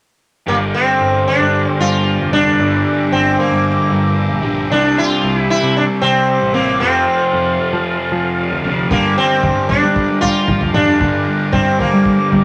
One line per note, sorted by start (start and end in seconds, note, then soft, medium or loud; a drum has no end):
0.46 0.71 G1 loud
0.46 2.30 G2 medium
0.46 2.31 D3 medium
0.46 2.32 G3 medium
0.46 0.55 A#3 medium
0.46 6.77 G4 medium
0.46 4.67 A#4 soft
0.46 6.77 D5 medium
0.46 2.57 F5 medium
0.74 1.23 C4 medium
1.01 1.25 G1 medium
1.28 1.71 D4 medium
1.41 1.64 G2 medium
1.71 1.82 C4 medium
1.80 2.16 G2 medium
1.80 2.35 F4 loud
2.21 2.56 F1 medium
2.32 2.58 G2 medium
2.32 2.58 D3 medium
2.32 2.61 G3 medium
2.32 3.12 D4 medium
2.59 2.83 G1 loud
2.59 4.42 G2 medium
2.59 4.43 D3 medium
2.59 4.41 G3 medium
2.59 6.77 E5 medium
3.12 3.36 G1 medium
3.12 3.37 C4 medium
3.40 4.41 A#3 medium
3.52 3.76 G2 medium
3.92 4.27 G2 medium
4.31 4.67 A#1 medium
4.42 4.70 G2 medium
4.42 4.69 D3 medium
4.42 4.68 G3 medium
4.69 4.94 C2 loud
4.69 6.53 C3 medium
4.69 6.54 G3 medium
4.69 6.53 C4 medium
4.69 4.98 D4 loud
4.69 8.87 C5 soft
4.98 5.37 F4 medium
5.23 5.47 C2 medium
5.37 5.50 E4 medium
5.50 5.74 E4 medium
5.63 5.87 C3 medium
5.77 5.84 D4 medium
6.02 6.38 C3 medium
6.02 6.53 C4 loud
6.41 6.77 A1 medium
6.54 6.81 C3 medium
6.54 6.80 G3 medium
6.54 6.80 A#3 medium
6.54 6.79 C4 medium
6.79 8.63 F2 medium
6.79 7.05 F2 loud
6.79 8.64 C3 medium
6.79 7.82 C4 medium
6.79 8.88 F4 medium
6.79 8.88 A4 medium
6.79 12.44 F5 medium
6.83 8.64 F3 loud
7.33 7.57 F2 medium
7.73 7.97 F3 medium
8.12 8.48 F3 medium
8.52 8.87 D2 medium
8.64 8.90 F2 medium
8.64 8.90 C3 medium
8.64 8.93 F3 medium
8.90 10.73 G2 medium
8.90 9.15 G2 loud
8.90 10.74 D3 medium
8.90 10.73 G3 medium
8.90 9.17 A#3 medium
8.90 12.44 G4 medium
8.90 12.44 A#4 medium
8.90 12.44 D5 medium
8.90 kick loud
8.90 floor tom medium
9.18 9.68 C4 medium
9.43 9.67 G2 medium
9.43 kick loud
9.43 floor tom medium
9.69 10.18 D4 medium
9.69 floor tom medium
9.83 10.07 G3 medium
9.96 kick loud
10.21 10.58 G3 medium
10.21 10.76 F4 loud
10.21 floor tom medium
10.48 kick loud
10.48 mid tom medium
10.61 10.97 F2 medium
10.61 floor tom medium
10.74 10.98 G2 medium
10.74 11.00 D3 medium
10.74 11.02 G3 medium
10.74 11.52 D4 medium
10.74 mid tom medium
10.99 12.44 G2 medium
10.99 11.25 G2 loud
10.99 12.44 D3 medium
10.99 12.44 G3 medium
10.99 kick loud
10.99 floor tom medium
11.52 11.77 G2 medium
11.52 11.77 C4 medium
11.52 kick loud
11.52 floor tom medium
11.79 12.44 A#3 medium
11.79 floor tom medium
11.93 12.17 G3 medium
12.05 kick loud
12.32 12.44 G3 medium
12.32 floor tom medium